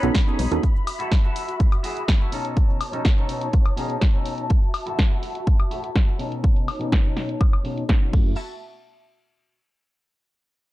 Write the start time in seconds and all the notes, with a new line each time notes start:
Already playing: D#4 C#5 B5
0.03 B1 B3 C#4 D#4 F#4 A4, closed hi-hat, shaker
0.15 kick, snare, closed hi-hat, shaker
0.26 B3 C#4 D#4 F#4 G#4 A4, shaker
0.39 B1, open hi-hat, high conga, low conga, shaker
0.51 D#2 B3 C#4 D#4 F#4 A4, closed hi-hat, shaker
0.63 F#4 E5, kick, closed hi-hat, shaker
0.76 shaker
0.87 open hi-hat, high woodblock, shaker
0.99 E4 F#4 A4, closed hi-hat, shaker
1.12 kick, snare, closed hi-hat, shaker
1.23 E4 F#4 A4, shaker
1.36 open hi-hat, shaker
1.48 closed hi-hat, shaker
1.60 kick, closed hi-hat, shaker
1.72 closed hi-hat, high woodblock, shaker
1.83 E4 F#4 G#4, open hi-hat, shaker
1.97 closed hi-hat, shaker
2.08 kick, snare, closed hi-hat, shaker
2.20 E4 F#4 A4, shaker
2.32 B2 C#4 D#4 A4 C#5 A5, open hi-hat, shaker
2.45 closed hi-hat, shaker
2.57 kick, closed hi-hat, shaker
2.70 shaker
2.81 open hi-hat, high woodblock, shaker
2.92 B2 C#4 D#4 A4, closed hi-hat, shaker
3.05 kick, snare, closed hi-hat, shaker
3.17 B2 C#4 D#4 A4, shaker
3.29 open hi-hat, shaker
3.41 closed hi-hat, shaker
3.53 kick, closed hi-hat, shaker
3.66 closed hi-hat, high woodblock, shaker
3.77 B2 C#4 D#4 G#4, open hi-hat, shaker
3.90 closed hi-hat, shaker
4.01 kick, snare, closed hi-hat, shaker
4.13 B2 C#4 D#4 A4, shaker
4.26 open hi-hat, shaker
4.38 closed hi-hat, shaker
4.49 F#4 E5, kick, closed hi-hat
4.63 shaker
4.74 open hi-hat, high woodblock, shaker
4.86 E4 F#4 A4, closed hi-hat, shaker
4.99 kick, snare, closed hi-hat, shaker
5.10 E4 F#4 A4, shaker
5.23 open hi-hat, shaker
5.35 closed hi-hat, shaker
5.47 kick, closed hi-hat, shaker
5.60 closed hi-hat, high woodblock, shaker
5.70 E4 F#4 A4, open hi-hat, shaker
5.84 closed hi-hat, shaker
5.96 kick, snare, closed hi-hat, shaker
6.07 E4 F#4 A4, shaker
6.19 B2 C#4 D#4 A4 C#5, open hi-hat, shaker
6.32 closed hi-hat, shaker
6.44 kick, closed hi-hat, shaker
6.56 closed hi-hat, shaker
6.68 open hi-hat, high woodblock, shaker
6.79 B2 C#4 D#4 A4, closed hi-hat, shaker
6.92 kick, snare, closed hi-hat
7.04 B2 C#4 D#4 A4, closed hi-hat, shaker
7.17 snare, open hi-hat, shaker
7.29 closed hi-hat, shaker
7.41 kick, closed hi-hat, high woodblock, shaker
7.53 closed hi-hat, high woodblock, shaker
7.64 B2 C#4 D#4 A4, open hi-hat, shaker
7.78 closed hi-hat, shaker
7.89 kick, snare, closed hi-hat
8.01 B2 C#4 D#4 F#4, shaker
8.12 F#2 A3 C#4 E4 F#4 A4 E5 A5, kick, crash